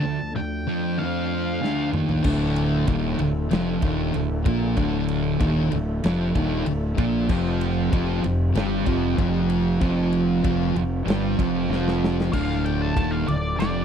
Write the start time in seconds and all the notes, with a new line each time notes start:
Already playing: F3 A3 D4 A5
0.03 D2
0.35 D2 G5
0.67 F2 F3
0.98 F2 F3 F5
1.62 D2 D3, snare
1.93 D#2 D#3, mid tom
2.09 floor tom
2.24 D1 D2 D3 D4 A4 E5, kick, crash
2.56 ride
2.87 D#1 D#2 D#3, kick, ride
3.19 D1 D2, ride
3.51 F1 F2 F3, snare, ride
3.82 D#1 D#2 D#3, kick, ride
4.14 D1 D2, ride
4.45 A#1 A#2 A#3, kick, ride
4.77 D1 D2 D3, kick, ride
5.08 ride
5.40 D#1 D#2 D#3, kick, ride
5.71 D1 D2, ride
6.04 F1 F2 F3, snare, ride
6.35 D#1 D#2 D#3, kick, ride
6.66 D1 D2, ride
6.97 A#1 A#2 A#3, kick, ride
7.28 F1 F2 F3 C4 G4, kick, crash
7.61 ride
7.91 F1 F2 F3, kick, ride
8.23 F1 F2, ride
8.55 G1 G2 G3, snare, ride
8.86 F1 F2 F3, kick, ride
9.18 F1 F2 F3, kick, ride
9.50 ride
9.81 F1 F2 F3 F4, kick, ride
10.12 ride
10.43 F1 F2 F3, kick, ride
10.75 F1 F2, ride
11.06 G1 G2 G3, ride
11.10 snare
11.39 F1 F2 F3, kick, ride
11.70 F1 F2 F3, snare
11.88 snare
12.04 snare
12.20 snare
12.32 D1 D2 D3 F3 D4 A4 F5, kick, crash
12.52 snare
12.65 G5, ride
12.81 A5
12.96 D#1 D#2 D#3, kick, ride
13.11 F5
13.28 D1 D2 D5, ride
13.59 F1 F2 F3 D5, snare, ride